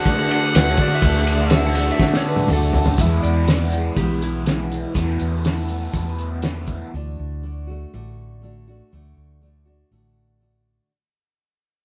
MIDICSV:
0, 0, Header, 1, 8, 480
1, 0, Start_track
1, 0, Tempo, 489796
1, 1021, Time_signature, 4, 2, 24, 8
1, 5346, Tempo, 494641
1, 11548, End_track
2, 0, Start_track
2, 0, Title_t, "Harmonica"
2, 0, Program_c, 0, 22
2, 0, Note_on_c, 0, 78, 113
2, 1470, Note_off_c, 0, 78, 0
2, 1470, Note_on_c, 0, 76, 113
2, 2411, Note_off_c, 0, 76, 0
2, 11548, End_track
3, 0, Start_track
3, 0, Title_t, "Electric slide guitar"
3, 0, Program_c, 1, 29
3, 548, Note_on_c, 1, 71, 102
3, 662, Note_off_c, 1, 71, 0
3, 691, Note_on_c, 1, 73, 85
3, 793, Note_off_c, 1, 73, 0
3, 799, Note_on_c, 1, 74, 95
3, 907, Note_off_c, 1, 74, 0
3, 930, Note_on_c, 1, 76, 95
3, 1612, Note_off_c, 1, 76, 0
3, 1631, Note_on_c, 1, 78, 81
3, 1857, Note_off_c, 1, 78, 0
3, 1879, Note_on_c, 1, 76, 79
3, 2101, Note_off_c, 1, 76, 0
3, 2127, Note_on_c, 1, 73, 77
3, 2228, Note_off_c, 1, 73, 0
3, 2232, Note_on_c, 1, 71, 86
3, 2458, Note_off_c, 1, 71, 0
3, 2479, Note_on_c, 1, 69, 93
3, 2817, Note_off_c, 1, 69, 0
3, 2950, Note_on_c, 1, 76, 89
3, 3157, Note_off_c, 1, 76, 0
3, 3161, Note_on_c, 1, 74, 72
3, 3869, Note_off_c, 1, 74, 0
3, 3894, Note_on_c, 1, 67, 73
3, 4130, Note_off_c, 1, 67, 0
3, 4152, Note_on_c, 1, 64, 82
3, 5081, Note_off_c, 1, 64, 0
3, 11548, End_track
4, 0, Start_track
4, 0, Title_t, "Tonewheel organ"
4, 0, Program_c, 2, 16
4, 0, Note_on_c, 2, 57, 78
4, 0, Note_on_c, 2, 62, 70
4, 0, Note_on_c, 2, 66, 77
4, 0, Note_on_c, 2, 69, 74
4, 2897, Note_off_c, 2, 69, 0
4, 2898, Note_off_c, 2, 57, 0
4, 2899, Note_off_c, 2, 66, 0
4, 2902, Note_off_c, 2, 62, 0
4, 2933, Note_on_c, 2, 68, 63
4, 2941, Note_on_c, 2, 71, 61
4, 2945, Note_on_c, 2, 59, 60
4, 2946, Note_on_c, 2, 64, 61
4, 4837, Note_off_c, 2, 64, 0
4, 4841, Note_off_c, 2, 68, 0
4, 4845, Note_off_c, 2, 71, 0
4, 4846, Note_off_c, 2, 59, 0
4, 4848, Note_on_c, 2, 64, 60
4, 4857, Note_on_c, 2, 71, 63
4, 4858, Note_on_c, 2, 59, 61
4, 4861, Note_on_c, 2, 69, 61
4, 6755, Note_off_c, 2, 64, 0
4, 6759, Note_off_c, 2, 71, 0
4, 6760, Note_off_c, 2, 59, 0
4, 6762, Note_off_c, 2, 69, 0
4, 11548, End_track
5, 0, Start_track
5, 0, Title_t, "Overdriven electric guitar"
5, 0, Program_c, 3, 29
5, 0, Note_on_c, 3, 50, 73
5, 0, Note_on_c, 3, 57, 81
5, 0, Note_on_c, 3, 62, 88
5, 0, Note_on_c, 3, 66, 88
5, 523, Note_off_c, 3, 50, 0
5, 525, Note_off_c, 3, 66, 0
5, 526, Note_off_c, 3, 57, 0
5, 532, Note_off_c, 3, 62, 0
5, 1744, Note_on_c, 3, 50, 68
5, 2427, Note_off_c, 3, 50, 0
5, 11548, End_track
6, 0, Start_track
6, 0, Title_t, "Steel-string acoustic guitar"
6, 0, Program_c, 4, 25
6, 66, Note_on_c, 4, 50, 83
6, 77, Note_on_c, 4, 57, 85
6, 86, Note_on_c, 4, 62, 95
6, 91, Note_on_c, 4, 66, 98
6, 536, Note_off_c, 4, 50, 0
6, 544, Note_off_c, 4, 57, 0
6, 547, Note_on_c, 4, 50, 67
6, 551, Note_off_c, 4, 62, 0
6, 556, Note_off_c, 4, 66, 0
6, 556, Note_on_c, 4, 57, 69
6, 563, Note_on_c, 4, 62, 82
6, 578, Note_on_c, 4, 66, 80
6, 773, Note_off_c, 4, 66, 0
6, 784, Note_off_c, 4, 50, 0
6, 785, Note_off_c, 4, 62, 0
6, 785, Note_on_c, 4, 66, 62
6, 789, Note_off_c, 4, 57, 0
6, 797, Note_on_c, 4, 62, 54
6, 811, Note_on_c, 4, 57, 49
6, 1000, Note_off_c, 4, 57, 0
6, 1007, Note_off_c, 4, 62, 0
6, 1008, Note_on_c, 4, 50, 94
6, 1012, Note_on_c, 4, 57, 103
6, 1019, Note_on_c, 4, 62, 94
6, 1020, Note_off_c, 4, 66, 0
6, 1031, Note_on_c, 4, 66, 108
6, 1479, Note_off_c, 4, 50, 0
6, 1491, Note_on_c, 4, 50, 69
6, 1492, Note_off_c, 4, 57, 0
6, 1498, Note_off_c, 4, 62, 0
6, 1504, Note_off_c, 4, 66, 0
6, 1504, Note_on_c, 4, 57, 75
6, 1511, Note_on_c, 4, 62, 75
6, 1521, Note_on_c, 4, 66, 77
6, 1719, Note_off_c, 4, 66, 0
6, 1730, Note_on_c, 4, 66, 60
6, 1734, Note_off_c, 4, 50, 0
6, 1734, Note_off_c, 4, 62, 0
6, 1741, Note_off_c, 4, 57, 0
6, 1745, Note_on_c, 4, 62, 61
6, 1756, Note_on_c, 4, 57, 53
6, 1965, Note_off_c, 4, 57, 0
6, 1968, Note_off_c, 4, 62, 0
6, 1970, Note_on_c, 4, 50, 98
6, 1974, Note_off_c, 4, 66, 0
6, 1977, Note_on_c, 4, 57, 92
6, 1980, Note_on_c, 4, 62, 103
6, 1990, Note_on_c, 4, 66, 112
6, 2436, Note_off_c, 4, 50, 0
6, 2446, Note_off_c, 4, 57, 0
6, 2447, Note_on_c, 4, 50, 66
6, 2454, Note_off_c, 4, 62, 0
6, 2458, Note_on_c, 4, 57, 82
6, 2463, Note_off_c, 4, 66, 0
6, 2466, Note_on_c, 4, 62, 76
6, 2480, Note_on_c, 4, 66, 83
6, 2932, Note_off_c, 4, 50, 0
6, 2933, Note_on_c, 4, 40, 78
6, 2938, Note_off_c, 4, 57, 0
6, 2939, Note_on_c, 4, 47, 80
6, 2941, Note_off_c, 4, 62, 0
6, 2949, Note_off_c, 4, 66, 0
6, 2949, Note_on_c, 4, 52, 86
6, 2952, Note_on_c, 4, 59, 90
6, 2953, Note_on_c, 4, 56, 87
6, 2955, Note_on_c, 4, 64, 82
6, 3401, Note_off_c, 4, 52, 0
6, 3405, Note_on_c, 4, 52, 65
6, 3406, Note_off_c, 4, 56, 0
6, 3415, Note_off_c, 4, 40, 0
6, 3417, Note_on_c, 4, 56, 62
6, 3419, Note_off_c, 4, 47, 0
6, 3420, Note_off_c, 4, 59, 0
6, 3424, Note_on_c, 4, 59, 66
6, 3429, Note_off_c, 4, 64, 0
6, 3433, Note_on_c, 4, 64, 66
6, 3649, Note_off_c, 4, 64, 0
6, 3652, Note_off_c, 4, 52, 0
6, 3658, Note_off_c, 4, 56, 0
6, 3660, Note_on_c, 4, 64, 54
6, 3661, Note_off_c, 4, 59, 0
6, 3673, Note_on_c, 4, 59, 50
6, 3676, Note_on_c, 4, 56, 50
6, 3687, Note_on_c, 4, 52, 46
6, 3899, Note_off_c, 4, 52, 0
6, 3899, Note_off_c, 4, 56, 0
6, 3899, Note_on_c, 4, 40, 81
6, 3900, Note_off_c, 4, 64, 0
6, 3906, Note_off_c, 4, 59, 0
6, 3906, Note_on_c, 4, 47, 77
6, 3911, Note_on_c, 4, 52, 74
6, 3911, Note_on_c, 4, 56, 82
6, 3916, Note_on_c, 4, 59, 75
6, 3920, Note_on_c, 4, 64, 77
6, 4353, Note_off_c, 4, 52, 0
6, 4362, Note_off_c, 4, 56, 0
6, 4365, Note_off_c, 4, 59, 0
6, 4365, Note_on_c, 4, 52, 63
6, 4374, Note_on_c, 4, 56, 59
6, 4377, Note_on_c, 4, 59, 67
6, 4381, Note_off_c, 4, 40, 0
6, 4381, Note_off_c, 4, 64, 0
6, 4384, Note_off_c, 4, 47, 0
6, 4393, Note_on_c, 4, 64, 66
6, 4586, Note_off_c, 4, 64, 0
6, 4597, Note_off_c, 4, 59, 0
6, 4598, Note_on_c, 4, 64, 50
6, 4603, Note_off_c, 4, 56, 0
6, 4609, Note_on_c, 4, 59, 46
6, 4614, Note_off_c, 4, 52, 0
6, 4615, Note_on_c, 4, 56, 42
6, 4625, Note_on_c, 4, 52, 42
6, 4843, Note_off_c, 4, 52, 0
6, 4847, Note_on_c, 4, 40, 70
6, 4851, Note_off_c, 4, 64, 0
6, 4854, Note_on_c, 4, 52, 78
6, 4855, Note_on_c, 4, 47, 80
6, 4856, Note_off_c, 4, 59, 0
6, 4859, Note_off_c, 4, 56, 0
6, 4866, Note_on_c, 4, 57, 75
6, 4867, Note_on_c, 4, 59, 75
6, 4867, Note_on_c, 4, 64, 90
6, 5325, Note_off_c, 4, 52, 0
6, 5337, Note_on_c, 4, 52, 56
6, 5338, Note_off_c, 4, 40, 0
6, 5342, Note_off_c, 4, 47, 0
6, 5344, Note_off_c, 4, 57, 0
6, 5348, Note_off_c, 4, 59, 0
6, 5348, Note_off_c, 4, 64, 0
6, 5348, Note_on_c, 4, 57, 57
6, 5360, Note_on_c, 4, 59, 60
6, 5364, Note_on_c, 4, 64, 64
6, 5566, Note_off_c, 4, 64, 0
6, 5574, Note_off_c, 4, 59, 0
6, 5577, Note_on_c, 4, 64, 50
6, 5580, Note_off_c, 4, 52, 0
6, 5586, Note_off_c, 4, 57, 0
6, 5586, Note_on_c, 4, 59, 46
6, 5596, Note_on_c, 4, 57, 42
6, 5605, Note_on_c, 4, 52, 45
6, 5817, Note_on_c, 4, 40, 75
6, 5819, Note_off_c, 4, 52, 0
6, 5820, Note_off_c, 4, 64, 0
6, 5825, Note_off_c, 4, 57, 0
6, 5825, Note_off_c, 4, 59, 0
6, 5828, Note_on_c, 4, 47, 82
6, 5830, Note_on_c, 4, 52, 77
6, 5837, Note_on_c, 4, 57, 77
6, 5839, Note_on_c, 4, 59, 77
6, 5841, Note_on_c, 4, 64, 85
6, 6280, Note_off_c, 4, 52, 0
6, 6292, Note_on_c, 4, 52, 61
6, 6297, Note_off_c, 4, 59, 0
6, 6299, Note_off_c, 4, 40, 0
6, 6301, Note_off_c, 4, 57, 0
6, 6305, Note_off_c, 4, 47, 0
6, 6305, Note_on_c, 4, 57, 57
6, 6309, Note_on_c, 4, 59, 57
6, 6311, Note_off_c, 4, 64, 0
6, 6321, Note_on_c, 4, 64, 64
6, 6776, Note_off_c, 4, 52, 0
6, 6785, Note_off_c, 4, 59, 0
6, 6789, Note_off_c, 4, 57, 0
6, 6790, Note_on_c, 4, 50, 77
6, 6791, Note_off_c, 4, 64, 0
6, 6793, Note_on_c, 4, 57, 81
6, 6805, Note_on_c, 4, 62, 79
6, 6811, Note_on_c, 4, 66, 89
6, 7257, Note_off_c, 4, 50, 0
6, 7261, Note_on_c, 4, 50, 55
6, 7262, Note_off_c, 4, 57, 0
6, 7266, Note_on_c, 4, 57, 57
6, 7273, Note_off_c, 4, 62, 0
6, 7277, Note_on_c, 4, 62, 63
6, 7283, Note_off_c, 4, 66, 0
6, 7287, Note_on_c, 4, 66, 66
6, 7484, Note_off_c, 4, 66, 0
6, 7496, Note_on_c, 4, 66, 45
6, 7501, Note_off_c, 4, 50, 0
6, 7503, Note_off_c, 4, 57, 0
6, 7506, Note_off_c, 4, 62, 0
6, 7518, Note_on_c, 4, 62, 45
6, 7527, Note_on_c, 4, 57, 43
6, 7738, Note_off_c, 4, 66, 0
6, 7739, Note_off_c, 4, 57, 0
6, 7749, Note_off_c, 4, 62, 0
6, 7751, Note_on_c, 4, 57, 74
6, 7752, Note_on_c, 4, 50, 82
6, 7759, Note_on_c, 4, 62, 81
6, 7767, Note_on_c, 4, 66, 85
6, 8216, Note_off_c, 4, 50, 0
6, 8219, Note_on_c, 4, 50, 59
6, 8227, Note_off_c, 4, 57, 0
6, 8231, Note_on_c, 4, 57, 58
6, 8237, Note_off_c, 4, 62, 0
6, 8241, Note_on_c, 4, 62, 60
6, 8244, Note_off_c, 4, 66, 0
6, 8248, Note_on_c, 4, 66, 61
6, 8459, Note_off_c, 4, 66, 0
6, 8460, Note_off_c, 4, 50, 0
6, 8466, Note_off_c, 4, 57, 0
6, 8470, Note_on_c, 4, 66, 49
6, 8471, Note_off_c, 4, 62, 0
6, 8486, Note_on_c, 4, 62, 42
6, 8498, Note_on_c, 4, 57, 39
6, 8705, Note_off_c, 4, 57, 0
6, 8706, Note_off_c, 4, 66, 0
6, 8711, Note_on_c, 4, 50, 66
6, 8713, Note_off_c, 4, 62, 0
6, 8716, Note_on_c, 4, 57, 76
6, 8723, Note_on_c, 4, 62, 74
6, 8729, Note_on_c, 4, 66, 85
6, 9174, Note_off_c, 4, 50, 0
6, 9186, Note_off_c, 4, 57, 0
6, 9186, Note_on_c, 4, 50, 54
6, 9192, Note_off_c, 4, 62, 0
6, 9195, Note_off_c, 4, 66, 0
6, 9198, Note_on_c, 4, 57, 57
6, 9204, Note_on_c, 4, 62, 56
6, 9215, Note_on_c, 4, 66, 59
6, 9410, Note_off_c, 4, 66, 0
6, 9421, Note_on_c, 4, 66, 49
6, 9424, Note_off_c, 4, 50, 0
6, 9425, Note_off_c, 4, 62, 0
6, 9430, Note_off_c, 4, 57, 0
6, 9437, Note_on_c, 4, 62, 44
6, 9460, Note_on_c, 4, 57, 38
6, 9662, Note_off_c, 4, 66, 0
6, 9668, Note_off_c, 4, 57, 0
6, 9670, Note_off_c, 4, 62, 0
6, 9677, Note_on_c, 4, 50, 68
6, 9680, Note_on_c, 4, 57, 72
6, 9693, Note_on_c, 4, 62, 75
6, 9694, Note_on_c, 4, 66, 79
6, 10129, Note_off_c, 4, 50, 0
6, 10140, Note_off_c, 4, 57, 0
6, 10141, Note_on_c, 4, 50, 57
6, 10150, Note_off_c, 4, 62, 0
6, 10151, Note_on_c, 4, 57, 52
6, 10159, Note_off_c, 4, 66, 0
6, 10162, Note_on_c, 4, 62, 58
6, 10169, Note_on_c, 4, 66, 56
6, 10623, Note_off_c, 4, 50, 0
6, 10628, Note_off_c, 4, 57, 0
6, 10633, Note_off_c, 4, 62, 0
6, 10637, Note_off_c, 4, 66, 0
6, 11548, End_track
7, 0, Start_track
7, 0, Title_t, "Fingered electric bass"
7, 0, Program_c, 5, 33
7, 542, Note_on_c, 5, 38, 101
7, 753, Note_off_c, 5, 38, 0
7, 772, Note_on_c, 5, 50, 97
7, 987, Note_off_c, 5, 50, 0
7, 1010, Note_on_c, 5, 38, 112
7, 1858, Note_off_c, 5, 38, 0
7, 2448, Note_on_c, 5, 38, 111
7, 2663, Note_off_c, 5, 38, 0
7, 2693, Note_on_c, 5, 38, 93
7, 2906, Note_off_c, 5, 38, 0
7, 2926, Note_on_c, 5, 40, 87
7, 3143, Note_off_c, 5, 40, 0
7, 3171, Note_on_c, 5, 40, 72
7, 3810, Note_off_c, 5, 40, 0
7, 3895, Note_on_c, 5, 35, 89
7, 4746, Note_off_c, 5, 35, 0
7, 4856, Note_on_c, 5, 40, 84
7, 5072, Note_off_c, 5, 40, 0
7, 5107, Note_on_c, 5, 40, 79
7, 5741, Note_off_c, 5, 40, 0
7, 5818, Note_on_c, 5, 40, 86
7, 6665, Note_off_c, 5, 40, 0
7, 6786, Note_on_c, 5, 38, 82
7, 6995, Note_off_c, 5, 38, 0
7, 7035, Note_on_c, 5, 38, 76
7, 7663, Note_off_c, 5, 38, 0
7, 7755, Note_on_c, 5, 33, 86
7, 8595, Note_off_c, 5, 33, 0
7, 8716, Note_on_c, 5, 38, 79
7, 8921, Note_off_c, 5, 38, 0
7, 8950, Note_on_c, 5, 38, 68
7, 9582, Note_off_c, 5, 38, 0
7, 9671, Note_on_c, 5, 33, 77
7, 10515, Note_off_c, 5, 33, 0
7, 11548, End_track
8, 0, Start_track
8, 0, Title_t, "Drums"
8, 54, Note_on_c, 9, 51, 125
8, 55, Note_on_c, 9, 36, 98
8, 59, Note_on_c, 9, 54, 31
8, 152, Note_off_c, 9, 51, 0
8, 153, Note_off_c, 9, 36, 0
8, 157, Note_off_c, 9, 54, 0
8, 295, Note_on_c, 9, 54, 87
8, 305, Note_on_c, 9, 51, 87
8, 393, Note_off_c, 9, 54, 0
8, 403, Note_off_c, 9, 51, 0
8, 521, Note_on_c, 9, 54, 104
8, 538, Note_on_c, 9, 51, 120
8, 549, Note_on_c, 9, 38, 117
8, 619, Note_off_c, 9, 54, 0
8, 636, Note_off_c, 9, 51, 0
8, 647, Note_off_c, 9, 38, 0
8, 757, Note_on_c, 9, 51, 89
8, 757, Note_on_c, 9, 54, 85
8, 766, Note_on_c, 9, 36, 81
8, 855, Note_off_c, 9, 51, 0
8, 855, Note_off_c, 9, 54, 0
8, 864, Note_off_c, 9, 36, 0
8, 1000, Note_on_c, 9, 51, 109
8, 1003, Note_on_c, 9, 36, 117
8, 1098, Note_off_c, 9, 51, 0
8, 1101, Note_off_c, 9, 36, 0
8, 1240, Note_on_c, 9, 54, 84
8, 1245, Note_on_c, 9, 51, 84
8, 1338, Note_off_c, 9, 54, 0
8, 1343, Note_off_c, 9, 51, 0
8, 1359, Note_on_c, 9, 54, 36
8, 1457, Note_off_c, 9, 54, 0
8, 1468, Note_on_c, 9, 51, 104
8, 1480, Note_on_c, 9, 38, 112
8, 1483, Note_on_c, 9, 54, 105
8, 1566, Note_off_c, 9, 51, 0
8, 1578, Note_off_c, 9, 38, 0
8, 1581, Note_off_c, 9, 54, 0
8, 1715, Note_on_c, 9, 51, 80
8, 1729, Note_on_c, 9, 54, 33
8, 1813, Note_off_c, 9, 51, 0
8, 1827, Note_off_c, 9, 54, 0
8, 1846, Note_on_c, 9, 54, 87
8, 1944, Note_off_c, 9, 54, 0
8, 1956, Note_on_c, 9, 36, 91
8, 1966, Note_on_c, 9, 38, 70
8, 1970, Note_on_c, 9, 54, 34
8, 2054, Note_off_c, 9, 36, 0
8, 2064, Note_off_c, 9, 38, 0
8, 2068, Note_off_c, 9, 54, 0
8, 2093, Note_on_c, 9, 54, 33
8, 2094, Note_on_c, 9, 38, 69
8, 2191, Note_off_c, 9, 54, 0
8, 2192, Note_off_c, 9, 38, 0
8, 2215, Note_on_c, 9, 54, 81
8, 2313, Note_off_c, 9, 54, 0
8, 2316, Note_on_c, 9, 48, 78
8, 2340, Note_on_c, 9, 54, 32
8, 2414, Note_off_c, 9, 48, 0
8, 2433, Note_on_c, 9, 47, 101
8, 2438, Note_off_c, 9, 54, 0
8, 2466, Note_on_c, 9, 54, 102
8, 2531, Note_off_c, 9, 47, 0
8, 2564, Note_off_c, 9, 54, 0
8, 2677, Note_on_c, 9, 43, 104
8, 2775, Note_off_c, 9, 43, 0
8, 2801, Note_on_c, 9, 43, 103
8, 2899, Note_off_c, 9, 43, 0
8, 2923, Note_on_c, 9, 36, 96
8, 2930, Note_on_c, 9, 42, 75
8, 3021, Note_off_c, 9, 36, 0
8, 3028, Note_off_c, 9, 42, 0
8, 3170, Note_on_c, 9, 42, 56
8, 3268, Note_off_c, 9, 42, 0
8, 3404, Note_on_c, 9, 42, 78
8, 3416, Note_on_c, 9, 38, 101
8, 3502, Note_off_c, 9, 42, 0
8, 3514, Note_off_c, 9, 38, 0
8, 3646, Note_on_c, 9, 42, 57
8, 3744, Note_off_c, 9, 42, 0
8, 3886, Note_on_c, 9, 36, 81
8, 3888, Note_on_c, 9, 42, 79
8, 3984, Note_off_c, 9, 36, 0
8, 3986, Note_off_c, 9, 42, 0
8, 4135, Note_on_c, 9, 42, 60
8, 4233, Note_off_c, 9, 42, 0
8, 4372, Note_on_c, 9, 42, 74
8, 4384, Note_on_c, 9, 38, 95
8, 4470, Note_off_c, 9, 42, 0
8, 4482, Note_off_c, 9, 38, 0
8, 4622, Note_on_c, 9, 42, 54
8, 4720, Note_off_c, 9, 42, 0
8, 4853, Note_on_c, 9, 36, 97
8, 4860, Note_on_c, 9, 42, 73
8, 4951, Note_off_c, 9, 36, 0
8, 4958, Note_off_c, 9, 42, 0
8, 5092, Note_on_c, 9, 42, 57
8, 5190, Note_off_c, 9, 42, 0
8, 5337, Note_on_c, 9, 42, 72
8, 5349, Note_on_c, 9, 38, 89
8, 5435, Note_off_c, 9, 42, 0
8, 5446, Note_off_c, 9, 38, 0
8, 5568, Note_on_c, 9, 42, 55
8, 5665, Note_off_c, 9, 42, 0
8, 5810, Note_on_c, 9, 42, 73
8, 5813, Note_on_c, 9, 36, 77
8, 5907, Note_off_c, 9, 42, 0
8, 5910, Note_off_c, 9, 36, 0
8, 6055, Note_on_c, 9, 42, 51
8, 6152, Note_off_c, 9, 42, 0
8, 6286, Note_on_c, 9, 42, 72
8, 6298, Note_on_c, 9, 38, 93
8, 6383, Note_off_c, 9, 42, 0
8, 6395, Note_off_c, 9, 38, 0
8, 6523, Note_on_c, 9, 42, 48
8, 6531, Note_on_c, 9, 36, 67
8, 6620, Note_off_c, 9, 42, 0
8, 6628, Note_off_c, 9, 36, 0
8, 11548, End_track
0, 0, End_of_file